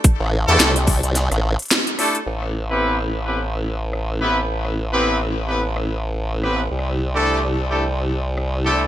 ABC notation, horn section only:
X:1
M:4/4
L:1/16
Q:"Swing 16ths" 1/4=108
K:Am
V:1 name="Horn section"
z3 [A,DEGA]2 z8 z [A,DEGA] z | z3 [B,CEGB]2 z2 [B,CEGB] z6 [B,CEGB] z | z3 [B,CEGB]2 z2 [B,CEGB] z6 [B,CEGB] z | z3 [A,DEGA]2 z2 [A,DEGA] z6 [A,DEGA] z |]